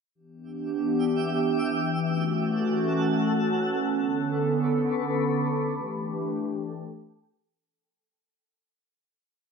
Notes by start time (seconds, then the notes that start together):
0.14 E3 B3 D4 G4 E5 D6
2.01 A3 C#4 F#4 A4 F#5 E6
3.87 D3 B3 A4 B4 A5 C#6 D6
5.73 E3 A3 D4 G4 A4 G5